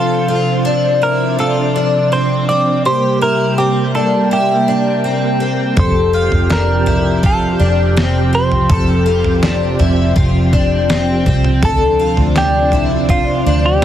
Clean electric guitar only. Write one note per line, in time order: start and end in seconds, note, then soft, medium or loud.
0.00 1.03 F4 medium
1.03 1.40 A#4 medium
1.40 2.12 A4 medium
2.13 2.48 C5 medium
2.49 2.86 D5 medium
2.86 3.22 C5 medium
3.22 3.58 A#4 medium
3.58 3.95 G4 medium
3.95 4.32 A4 medium
4.33 5.38 G4 medium
5.79 6.52 C5 medium
6.52 7.26 A#4 medium
7.26 7.94 A4 medium
8.35 10.50 C5 medium
11.65 12.37 A4 medium
12.38 13.12 G4 medium
13.10 13.66 F4 medium
13.66 13.85 G4 medium